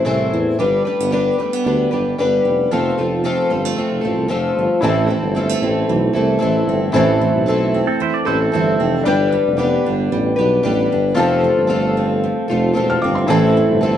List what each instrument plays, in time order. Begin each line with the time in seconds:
Already playing: steel-string acoustic guitar E3 E4
0.05 tuba C2, twelve-string acoustic guitar A2 E3 A3 C4 E4 C5, steel-string acoustic guitar C4
0.33 tuba E2, steel-string acoustic guitar E3
0.59 tuba G1, twelve-string acoustic guitar G3 D4 G4 B4, steel-string acoustic guitar G3 D4
0.85 steel-string acoustic guitar A3, twelve-string acoustic guitar D4 G4 B4
1.00 tuba G1, steel-string acoustic guitar B3
1.11 twelve-string acoustic guitar G3 D4 G4 B4, steel-string acoustic guitar D4
1.38 steel-string acoustic guitar A3, twelve-string acoustic guitar D4 G4 B4
1.53 steel-string acoustic guitar B3
1.64 tuba D2, twelve-string acoustic guitar G3 D4 G4 B4, steel-string acoustic guitar D4
1.91 tuba G1, steel-string acoustic guitar G3, twelve-string acoustic guitar D4 G4 B4
2.18 tuba G1, twelve-string acoustic guitar G3 D4 G4 B4, steel-string acoustic guitar B3
2.45 tuba F1, steel-string acoustic guitar G3
2.71 tuba F1, twelve-string acoustic guitar F3 A3 C4 F4 A4, steel-string acoustic guitar F3 C4
2.98 tuba F1, steel-string acoustic guitar A3, twelve-string acoustic guitar C4 F4 A4
3.24 twelve-string acoustic guitar F3 A3 C4 F4 A4, steel-string acoustic guitar C4
3.50 tuba G1, steel-string acoustic guitar G3, twelve-string acoustic guitar C4 F4 A4
3.65 steel-string acoustic guitar A3
3.76 twelve-string acoustic guitar A3 C4 F4 A4, steel-string acoustic guitar C4
3.90 tuba F1
4.01 tuba A1, steel-string acoustic guitar F3, twelve-string acoustic guitar C4 F4 A4
4.17 tuba C2
4.28 tuba F1, twelve-string acoustic guitar F3 A3 C4 F4 A4, steel-string acoustic guitar A3
4.56 tuba G1, steel-string acoustic guitar F3
4.81 tuba A1, twelve-string acoustic guitar A2 E3 A3 C4 E4 A4, steel-string acoustic guitar E3, felt piano E4 B4 A5
4.85 steel-string acoustic guitar C4, felt piano C5
5.07 steel-string acoustic guitar E3, twelve-string acoustic guitar A3 C4 E4 A4
5.22 tuba G1
5.35 steel-string acoustic guitar G3, twelve-string acoustic guitar A3 C4 E4 A4
5.49 steel-string acoustic guitar A3
5.61 tuba A1, twelve-string acoustic guitar A3 C4 E4 A4, steel-string acoustic guitar C4
5.88 tuba B1, steel-string acoustic guitar E3
6.13 tuba C2, steel-string acoustic guitar A3, twelve-string acoustic guitar A3 C4 E4 A4
6.39 tuba A1, steel-string acoustic guitar E3, twelve-string acoustic guitar A3 C4 E4 A4
6.67 tuba G1, steel-string acoustic guitar C4
6.92 tuba A1, twelve-string acoustic guitar A2 E3 A3 C4 E4 A4, steel-string acoustic guitar E3, felt piano E4 C5
6.97 steel-string acoustic guitar C4, felt piano A5
7.21 steel-string acoustic guitar E3
7.33 tuba B1
7.46 twelve-string acoustic guitar A3 C4 E4 A4, steel-string acoustic guitar A3
7.74 steel-string acoustic guitar C4
7.87 pedal steel guitar C4 A4
8.00 steel-string acoustic guitar E3, pedal steel guitar E4 C5
8.14 pedal steel guitar D5
8.25 tuba A1, steel-string acoustic guitar A3, twelve-string acoustic guitar A3 C4 E4 A4, pedal steel guitar E4 C5
8.41 pedal steel guitar C4 A4
8.52 tuba G1, steel-string acoustic guitar E3, twelve-string acoustic guitar A3 C4 E4 A4
8.80 tuba F1, steel-string acoustic guitar C4
9.03 tuba G1, twelve-string acoustic guitar G3 D4 G4, steel-string acoustic guitar G3 D4, felt piano D4 B4
9.07 twelve-string acoustic guitar B4, felt piano G5
9.32 steel-string acoustic guitar G3
9.47 tuba F1
9.57 twelve-string acoustic guitar G3 D4 G4 B4, steel-string acoustic guitar B3
9.86 tuba G1, steel-string acoustic guitar D4
10.12 tuba A1, steel-string acoustic guitar G3
10.36 tuba B1, steel-string acoustic guitar B3, twelve-string acoustic guitar D4 G4 B4
10.63 tuba A1, twelve-string acoustic guitar G3 D4 G4 B4, steel-string acoustic guitar G3
10.92 tuba G1, steel-string acoustic guitar D4
11.14 tuba F1, twelve-string acoustic guitar F3 A3 C4 F4 A4, steel-string acoustic guitar F3 C4, felt piano F4 C5
11.19 felt piano A5
11.44 steel-string acoustic guitar F3
11.57 tuba G1
11.67 twelve-string acoustic guitar A3 C4 F4 A4, steel-string acoustic guitar A3
11.97 steel-string acoustic guitar C4
12.24 steel-string acoustic guitar F3
12.48 tuba F1, steel-string acoustic guitar A3, twelve-string acoustic guitar C4 F4 A4
12.73 steel-string acoustic guitar F3, twelve-string acoustic guitar A3 C4 F4 A4
12.77 tuba E1
12.90 felt piano A5 F6
13.02 tuba G1, steel-string acoustic guitar C4, felt piano F5 D6
13.15 felt piano E5 C6
13.27 tuba A1, twelve-string acoustic guitar A2 E3 A3 C4 E4 A4, steel-string acoustic guitar E3, felt piano E4 C5 A5
13.31 steel-string acoustic guitar C4
13.57 steel-string acoustic guitar E3
13.70 tuba G1
13.81 twelve-string acoustic guitar A3 C4 E4 A4, steel-string acoustic guitar A3